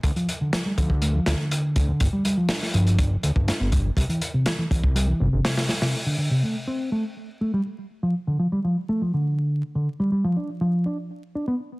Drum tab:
HH |xxx-x-x-x-x-x-x-|x-x-o-xxx-x-x-x-|xxx-x-x-x---oooo|----------------|
SD |----o-----o-----|----oo------o---|----o-------oooo|----------------|
BD |o-----oo------o-|o-------o--o--o-|o-----oo--------|----------------|

HH |----------------|----------------|
SD |----------------|----------------|
BD |----------------|----------------|